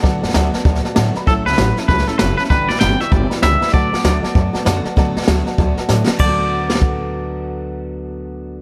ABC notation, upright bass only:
X:1
M:4/4
L:1/8
Q:"Swing" 1/4=195
K:D
V:1 name="Upright bass" clef=bass
D,, F,, D,, z D,, z A,, z | A,,, C,, A,,, z C,, z F,,, z | G,,, B,,, G,,, z G,,, z C,, z | D,, F,, D,, z F,, z F,, z |
D,, F,, D,, z D,, z A,, z | D,,8- | D,,8 |]